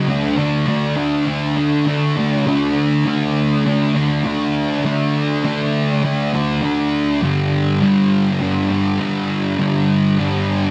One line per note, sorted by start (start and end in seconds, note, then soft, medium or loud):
0.07 0.65 D3 medium
0.07 0.37 A3 medium
0.07 0.36 D4 medium
0.37 0.66 A3 medium
0.37 0.67 D4 medium
0.66 1.25 D3 medium
0.66 0.97 A3 medium
0.66 0.95 D4 medium
0.96 1.26 A3 medium
0.96 1.27 D4 medium
1.26 1.84 D3 medium
1.26 1.57 A3 medium
1.26 1.55 D4 medium
1.56 1.86 A3 medium
1.56 1.87 D4 medium
1.86 2.44 D3 medium
1.86 2.17 A3 medium
1.86 2.15 D4 medium
2.16 2.45 A3 medium
2.16 2.44 D4 medium
2.46 3.05 D3 medium
2.46 3.06 A3 loud
2.46 3.07 D4 loud
3.05 3.64 D3 medium
3.05 3.65 A3 medium
3.05 3.66 D4 medium
3.65 4.23 D3 medium
3.65 3.96 A3 medium
3.65 3.94 D4 medium
3.95 4.24 A3 medium
3.95 4.25 D4 medium
4.24 4.82 D3 medium
4.24 4.84 A3 medium
4.24 4.85 D4 medium
4.83 5.42 D3 medium
4.83 5.44 A3 medium
4.83 5.45 D4 medium
5.43 6.02 D3 medium
5.43 6.03 A3 medium
5.43 6.04 D4 medium
6.03 6.61 D3 medium
6.03 6.35 A3 loud
6.03 6.33 D4 loud
6.33 6.62 A3 medium
6.33 6.63 D4 medium
6.62 7.19 D3 medium
6.62 7.23 A3 medium
6.62 10.14 D4 medium
7.22 7.81 G2 medium
7.22 7.81 D3 loud
7.22 7.83 G3 loud
7.82 8.40 G2 medium
7.82 8.40 D3 medium
7.82 8.41 G3 medium
8.40 8.99 G2 medium
8.40 8.70 D3 medium
8.40 8.69 G3 loud
8.69 8.99 D3 medium
8.69 9.01 G3 medium
8.99 9.58 G2 medium
8.99 9.58 D3 medium
8.99 9.59 G3 medium
9.59 10.16 G2 medium
9.59 10.17 D3 loud
9.59 10.18 G3 loud
10.17 10.71 G2 medium
10.17 10.71 D3 medium
10.17 10.71 G3 medium